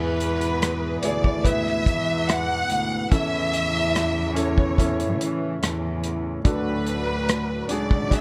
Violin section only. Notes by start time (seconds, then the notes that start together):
Already playing: B4
1.04 D5
1.45 E5
2.29 F#5
3.12 E5
4.37 C#5
6.48 B4
7.72 D5
8.14 E5